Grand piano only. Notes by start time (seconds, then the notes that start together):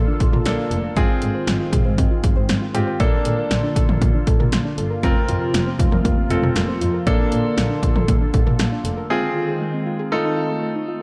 Already playing: A#3 D4 A4
0.46 A#3 D4 A4
0.97 C4 F4 G#4
2.75 C4 F4 G4
3.00 A#3 D4 A4
5.03 C4 F4 A#4
6.30 C4 F4 A4
7.07 A#3 D4 A4
9.10 C4 F4 G#4
10.12 D#4 F4 A4